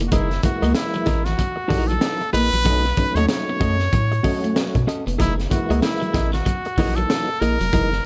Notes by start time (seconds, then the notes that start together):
0.00 F1 A#3
0.07 F#4
0.12 F#1 E3 F#3 G#3 A#3 D#4 E4 G#4 A#4 D#5, kick, closed hi-hat
0.31 muted clean electric guitar stroke, snare, closed hi-hat
0.43 E3 G#3 A#3 E4 F#4, muted clean electric guitar stroke, kick, closed hi-hat
0.62 C#2 A#3 E4 G#4 A#4 D#5, closed hi-hat
0.75 E4, muted clean electric guitar stroke, snare, closed hi-hat
0.93 F#3, muted clean electric guitar stroke, closed hi-hat
1.06 A1 E4 G#4 A#4 D#5, muted clean electric guitar stroke, kick, snare, closed hi-hat
1.25 E3 F#4, muted clean electric guitar stroke, snare, closed hi-hat
1.37 F#3, muted clean electric guitar stroke, kick, closed hi-hat
1.56 muted clean electric guitar stroke
1.68 A#1 E3 F#3 A#3 D#4 E4 G#4 A#4 D#5, kick, open hi-hat
1.73 muted clean electric guitar stroke
1.87 A4, muted clean electric guitar stroke, closed hi-hat
1.92 F#3
2.01 muted clean electric guitar stroke, snare, closed hi-hat
2.21 muted clean electric guitar stroke, closed hi-hat
2.33 A#1 A#3 E4 G#4 A#4 B4 D#5, closed hi-hat
2.52 A#1 F#3, muted clean electric guitar stroke, closed hi-hat
2.65 B1 F#3 A3 B3 C#4 D#4 F#4 A4 D#5, kick, closed hi-hat
2.84 muted clean electric guitar stroke, snare, closed hi-hat
2.97 F#3 A3 C#4 D#4, muted clean electric guitar stroke, kick, closed hi-hat
3.15 D#2 A3 C#4 F#4 A4 C#5 D#5, closed hi-hat
3.28 C#5, muted clean electric guitar stroke, snare, closed hi-hat
3.49 B3, muted clean electric guitar stroke
3.60 F#2 A3 C#4 F#4 A4 D#5, kick, closed hi-hat
3.80 muted clean electric guitar stroke, snare, closed hi-hat
3.93 A2 F#3, muted clean electric guitar stroke, kick, closed hi-hat
4.12 muted clean electric guitar stroke, closed hi-hat
4.23 F#3 A3 C#4 F#4 A4 D#5, muted clean electric guitar stroke, kick, open hi-hat
4.43 A3, muted clean electric guitar stroke, closed hi-hat
4.56 B3, snare, closed hi-hat
4.75 B2, muted clean electric guitar stroke, kick, closed hi-hat
4.87 C#4 F#4 A4 D#5, muted clean electric guitar stroke, closed hi-hat
5.07 F1 B3, muted clean electric guitar stroke, closed hi-hat
5.18 F#1 E3 F#3 G#3 A#3 D#4 E4 G#4 A#4 D#5, kick, closed hi-hat
5.39 muted clean electric guitar stroke, snare, closed hi-hat
5.50 E3 G#3 A#3 E4 F#4, muted clean electric guitar stroke, kick, closed hi-hat
5.70 C#2 A#3 E4 G#4 A#4 D#5, closed hi-hat
5.82 E4, muted clean electric guitar stroke, snare, closed hi-hat
6.01 F#3, muted clean electric guitar stroke, closed hi-hat
6.14 A1 E4 G#4 A#4 D#5, muted clean electric guitar stroke, kick, snare, closed hi-hat
6.33 E3 F#4, muted clean electric guitar stroke, snare, closed hi-hat
6.46 F#3, muted clean electric guitar stroke, kick, closed hi-hat
6.65 muted clean electric guitar stroke, closed hi-hat
6.77 A#1 E3 F#3 A#3 D#4 E4 G#4 A#4 D#5, muted clean electric guitar stroke, kick, open hi-hat
6.96 F#3 A4, muted clean electric guitar stroke, closed hi-hat
7.10 muted clean electric guitar stroke, snare, closed hi-hat
7.29 muted clean electric guitar stroke
7.40 A#1 A#3 E4 G#4 A#4 D#5, closed hi-hat
7.60 F1 F#3, closed hi-hat
7.73 F#1 E3 F#3 G#3 A#3 D#4 E4 G#4 A#4 D#5, kick, closed hi-hat
7.92 muted clean electric guitar stroke, snare, closed hi-hat